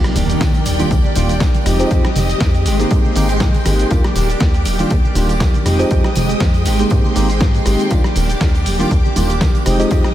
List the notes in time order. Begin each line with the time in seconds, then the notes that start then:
Already playing: D#3 A#3 D4 G4 D5 G5, impact
0.04 cross-stick, closed hi-hat, high conga, shaker
0.15 D#1 D#3 A#3 D4 G4, open hi-hat, tambourine, low conga, shaker
0.29 A#3 D4 G4, closed hi-hat, tambourine, shaker
0.40 D#2 D#3 A#3 D4 G4, kick, snare, closed hi-hat, tambourine, shaker
0.54 A#3 D4 G4, closed hi-hat, tambourine, shaker
0.65 D#1, open hi-hat, tambourine, high conga, shaker
0.79 D#3 G3 A#3 D4 F4 G4, closed hi-hat, tambourine, shaker
0.91 D#2, kick, closed hi-hat, tambourine, shaker
1.04 A#3 D4 G4, low conga, shaker
1.15 D#1 D#3 G3 A#3 D4 F4 G4, open hi-hat, tambourine, shaker
1.29 A#3 D4 G4, closed hi-hat, tambourine, shaker
1.40 D#2 D#3 A#3 D4 G4, kick, snare, closed hi-hat, tambourine, high conga, shaker
1.54 closed hi-hat, tambourine, low conga, shaker
1.65 F1 D#3 F3 G#3 C4 D#4 G4 D#5, cross-stick, open hi-hat, tambourine, shaker
1.79 F3 G#3 C4 D#4 G4, closed hi-hat, tambourine, shaker
1.90 F2 D#3 G#3 C4 G4, kick, closed hi-hat, tambourine, shaker
2.05 cross-stick, closed hi-hat, high conga, shaker
2.15 F1 D#3 G#3 C4 G4, open hi-hat, tambourine, low conga, shaker
2.29 G#3 C4 G4, closed hi-hat, tambourine, shaker
2.40 F2 D#3 G#3 C4 G4, kick, snare, closed hi-hat, tambourine, shaker
2.54 G#3 C4 G4, closed hi-hat, tambourine, shaker
2.65 G#1 D#3 G#3 C4 G4 G5 C6, open hi-hat, tambourine, shaker
2.79 G#3 A#3 C4 D#4 G4, closed hi-hat, tambourine, shaker
2.91 G#2 G#3 A#3 C4 D#4 G4, kick, closed hi-hat, tambourine, shaker
3.04 G#3 C4 G4, low conga, shaker
3.15 G#1 D#3 G#3 A#3 C4 D#4 G4, open hi-hat, tambourine, shaker
3.29 G#3 C4 G4, closed hi-hat, tambourine, shaker
3.40 G#2 D#3 G#3 A#3 C4 D#4 G4, kick, snare, closed hi-hat, tambourine, high conga, shaker
3.54 closed hi-hat, tambourine, low conga, shaker
3.65 G#1 D#3 G#3 A#3 C4 D#4 G4, cross-stick, open hi-hat, tambourine, shaker
3.79 G#3 C4 G4, closed hi-hat, tambourine, shaker
3.91 D#2 D#3 G3 A#3 D4 F4 G4 D6, kick, closed hi-hat, tambourine, shaker
4.04 cross-stick, closed hi-hat, high conga, shaker
4.15 D#1 D#3 A#3 D4 G4, open hi-hat, tambourine, low conga, shaker
4.29 A#3 D4 G4, closed hi-hat, tambourine, shaker
4.40 D#2 D#3 A#3 D4 G4, kick, snare, closed hi-hat, tambourine, shaker
4.54 A#3 D4 G4, closed hi-hat, tambourine, shaker
4.65 D#1, open hi-hat, tambourine, high conga, shaker
4.79 D#3 G3 A#3 D4 F4 G4, closed hi-hat, tambourine, shaker
4.91 D#2, kick, closed hi-hat, tambourine, shaker
5.04 A#3 D4 G4, low conga, shaker
5.15 D#1 D#3 G3 A#3 D4 F4 G4, open hi-hat, tambourine, shaker
5.29 A#3 D4 G4, closed hi-hat, tambourine, shaker
5.40 D#2 D#3 A#3 G4, kick, snare, closed hi-hat, tambourine, high conga, shaker
5.54 closed hi-hat, tambourine, low conga, shaker
5.65 F1 D#3 F3 G#3 C4 D#4 G4 G5 D#6, cross-stick, open hi-hat, tambourine, shaker
5.79 F3 G#3 C4 D#4 G4, closed hi-hat, tambourine, shaker
5.90 F2 D#3 F3 G#3 C4 G4, kick, closed hi-hat, tambourine, shaker
6.04 cross-stick, closed hi-hat, high conga, shaker
6.15 F1 D#3 G#3 C4 G4, open hi-hat, tambourine, low conga, shaker
6.29 G#3 C4 G4, closed hi-hat, tambourine, shaker
6.40 F2 D#3 G#3 C4 G4, kick, snare, closed hi-hat, tambourine, shaker
6.54 G#3 C4 G4, closed hi-hat, tambourine, shaker
6.65 G#1 D#3 G#3 C4 G4 C6, open hi-hat, tambourine, shaker
6.79 G#3 A#3 C4 D#4 G4, closed hi-hat, tambourine, shaker
6.90 G#2 G#3 A#3 C4 D#4 G4, kick, closed hi-hat, tambourine, shaker
7.04 G#3 C4 G4, low conga, shaker
7.15 G#1 D#3 G#3 A#3 C4 D#4 G4, open hi-hat, tambourine, shaker
7.29 G#3 C4 G4, closed hi-hat, tambourine, shaker
7.40 G#2 D#3 G#3 A#3 C4 D#4 G4, kick, snare, closed hi-hat, tambourine, high conga, shaker
7.54 closed hi-hat, tambourine, low conga, shaker
7.65 G#1 D#3 G#3 A#3 C4 D#4 G4, cross-stick, open hi-hat, tambourine, shaker
7.79 closed hi-hat, tambourine, shaker
7.90 D#2 D#3 G3 A#3 D4 F4 G4 D6, kick, closed hi-hat, tambourine, shaker
8.04 cross-stick, closed hi-hat, high conga, shaker
8.15 D#1 D#3 A#3 D4 G4, open hi-hat, tambourine, low conga, shaker
8.29 A#3 D4 G4, closed hi-hat, tambourine, shaker
8.40 D#2 D#3 A#3 D4 G4, kick, snare, closed hi-hat, tambourine, shaker
8.54 A#3 D4 G4, closed hi-hat, tambourine, shaker
8.66 D#1, open hi-hat, tambourine, high conga, shaker
8.79 D#3 G3 A#3 D4 F4 G4, closed hi-hat, tambourine, shaker
8.91 D#2, kick, closed hi-hat, shaker
9.04 A#3 D4 G4, low conga, shaker
9.15 D#1 D#3 G3 A#3 D4 F4 G4, open hi-hat, tambourine, shaker
9.29 A#3 D4 G4, closed hi-hat, tambourine, shaker
9.41 D#2 D#3 A#3 D4 G4, kick, snare, closed hi-hat, tambourine, high conga, shaker
9.54 closed hi-hat, tambourine, low conga, shaker
9.65 F1 D#3 F3 G#3 C4 D#4 G4 G5 D#6, cross-stick, open hi-hat, tambourine, shaker
9.79 F3 G#3 C4 D#4 G4, closed hi-hat, tambourine, shaker
9.90 F2 D#3 F3 G#3 C4 G4, kick, closed hi-hat, tambourine, shaker
10.04 cross-stick, closed hi-hat, high conga, shaker